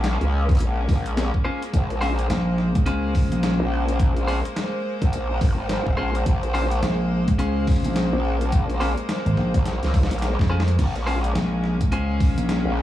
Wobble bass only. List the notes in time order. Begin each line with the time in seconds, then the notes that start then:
Already playing: A#1
0.21 C#2
0.60 A#1
0.89 A#1
1.73 A#1
3.60 A#1
5.02 A#1
5.41 G#1
5.98 A#1
6.26 A#1
8.13 A#1
9.54 A#1
9.83 C#2
10.11 A#1
10.79 A#1
12.65 A#1